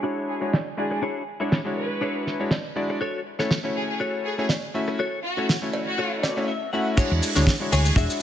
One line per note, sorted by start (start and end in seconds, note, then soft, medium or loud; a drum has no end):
0.00 0.38 G#3 medium
0.00 0.38 D4 medium
0.00 0.42 D4 medium
0.00 0.39 E4 medium
0.00 0.42 E4 medium
0.00 0.39 F#4 medium
0.00 0.42 F#4 medium
0.00 0.42 G#4 medium
0.00 0.39 C#5 medium
0.05 0.42 C#5 medium
0.28 0.37 G#4 medium
0.41 0.54 G#3 medium
0.41 0.54 D4 medium
0.41 0.54 E4 medium
0.41 0.54 F#4 medium
0.41 0.49 G#4 medium
0.41 0.54 C#5 medium
0.53 snare loud
0.53 cowbell soft
0.77 0.99 G#3 medium
0.77 0.99 D4 medium
0.77 1.00 E4 medium
0.77 1.00 F#4 medium
0.77 0.86 G#4 medium
0.77 1.00 D5 loud
0.77 muted clean electric guitar stroke soft
0.91 0.98 G#4 medium
0.91 muted clean electric guitar stroke medium
1.02 1.22 D4 loud
1.02 1.22 E4 medium
1.02 1.22 F#4 medium
1.02 1.22 G#4 medium
1.02 1.22 C#5 loud
1.40 1.53 G#3 medium
1.40 1.53 D4 medium
1.40 1.59 D4 medium
1.40 1.59 E4 medium
1.40 1.53 E4 medium
1.40 1.54 F#4 medium
1.40 1.59 F#4 medium
1.40 1.59 G#4 medium
1.40 1.59 C#5 medium
1.40 1.54 C#5 medium
1.52 snare loud
1.65 2.36 G#3 medium
1.65 2.37 D4 medium
1.65 2.37 E4 medium
1.65 2.37 F#4 medium
1.65 2.37 C#5 medium
1.76 2.27 B4 medium
1.76 muted clean electric guitar stroke soft
2.01 2.40 D4 medium
2.01 2.40 E4 medium
2.01 2.40 F#4 medium
2.01 2.40 G#4 medium
2.01 2.40 C#5 medium
2.27 snare soft
2.39 2.52 G#3 medium
2.39 2.53 D4 medium
2.39 2.52 E4 medium
2.39 2.53 F#4 medium
2.39 2.53 C#5 medium
2.51 snare loud
2.51 cowbell medium
2.76 2.98 G#3 medium
2.76 2.98 D4 medium
2.76 2.98 E4 medium
2.76 2.98 F#4 medium
2.76 2.98 D5 medium
2.76 muted clean electric guitar stroke soft
2.89 muted clean electric guitar stroke medium
3.01 3.20 F#4 loud
3.01 3.20 A4 medium
3.01 3.20 C#5 loud
3.39 3.51 A3 medium
3.39 3.52 C#4 medium
3.39 3.52 E4 medium
3.39 3.52 F#4 medium
3.39 3.57 F#4 medium
3.39 3.57 A4 medium
3.39 3.58 C#5 medium
3.39 3.52 C#5 medium
3.39 snare soft
3.51 snare loud
3.63 4.35 A3 medium
3.63 4.35 C#4 medium
3.63 4.35 E4 medium
3.63 4.36 F#4 medium
3.63 4.36 C#5 medium
3.76 3.84 G#4 medium
3.76 muted clean electric guitar stroke soft
3.89 3.96 G#4 medium
4.00 4.38 F#4 medium
4.00 4.38 A4 medium
4.00 4.39 C#5 medium
4.25 4.34 G#4 medium
4.38 4.51 A3 medium
4.38 4.51 C#4 medium
4.38 4.51 E4 medium
4.38 4.51 F#4 medium
4.38 4.46 G#4 medium
4.38 4.51 C#5 medium
4.49 snare medium
4.49 cowbell medium
4.74 4.96 A3 medium
4.74 4.96 C#4 medium
4.74 4.96 E4 medium
4.74 4.97 F#4 medium
4.74 4.97 E5 loud
4.74 muted clean electric guitar stroke soft
4.88 muted clean electric guitar stroke medium
4.99 5.18 F#4 loud
4.99 5.19 A4 medium
4.99 5.19 C#5 loud
5.24 5.44 F#4 medium
5.37 5.50 A3 medium
5.37 5.50 C#4 medium
5.37 5.50 E4 medium
5.37 5.56 F#4 medium
5.37 5.50 F#4 medium
5.37 5.56 A4 medium
5.37 5.56 C#5 medium
5.37 5.51 C#5 medium
5.49 snare loud
5.62 6.33 A3 medium
5.62 6.33 C#4 medium
5.62 6.34 E4 medium
5.62 6.34 F#4 medium
5.62 6.34 C#5 medium
5.73 muted clean electric guitar stroke soft
5.73 cowbell medium
5.86 6.23 F#4 medium
5.98 6.37 F#4 medium
5.98 6.37 A4 medium
5.98 6.37 C#5 medium
6.23 6.46 D5 medium
6.23 snare soft
6.23 cowbell medium
6.37 6.49 A3 medium
6.37 6.49 C#4 medium
6.37 6.49 E4 medium
6.37 6.50 F#4 medium
6.37 6.50 C#5 loud
6.48 6.71 E5 medium
6.73 6.95 A3 medium
6.73 6.95 C#4 medium
6.73 6.95 E4 medium
6.73 6.95 F#4 medium
6.73 6.95 E5 loud
6.73 6.96 F#5 medium
6.97 7.31 G#3 loud
6.97 7.11 D4 loud
6.97 7.31 D4 medium
6.97 7.31 E4 medium
6.97 7.11 F#4 medium
6.97 7.31 F#4 medium
6.97 7.11 G#4 medium
6.97 7.11 C#5 loud
6.97 7.31 C#5 loud
6.97 muted fingered electric bass stroke soft
6.97 kick loud
6.97 crash medium
6.97 shaker medium
7.11 7.19 E2 loud
7.22 muted clean electric guitar stroke soft
7.22 open hi-hat loud
7.22 shaker medium
7.35 7.44 D2 medium
7.35 7.48 G#3 medium
7.35 7.54 D4 medium
7.35 7.48 D4 medium
7.35 7.49 E4 medium
7.35 7.54 F#4 medium
7.35 7.49 F#4 medium
7.35 7.54 G#4 medium
7.35 7.54 C#5 medium
7.35 7.49 C#5 medium
7.35 snare soft
7.35 shaker medium
7.47 kick loud
7.47 snare loud
7.47 shaker medium
7.60 8.22 G#3 medium
7.60 8.22 D4 medium
7.60 8.22 E4 medium
7.60 8.22 F#4 medium
7.60 8.22 C#5 medium
7.72 7.89 D2 medium
7.72 7.86 D4 medium
7.72 7.86 F#4 medium
7.72 7.81 G#4 medium
7.72 7.86 G#4 medium
7.72 7.86 C#5 loud
7.72 open hi-hat loud
7.72 shaker medium
7.85 7.93 G#4 medium
7.85 shaker medium
7.96 8.05 E1 medium
7.96 8.22 D4 medium
7.96 8.22 F#4 medium
7.96 8.22 G#4 medium
7.96 8.22 E5 loud
7.96 kick loud
7.96 shaker medium
8.10 shaker soft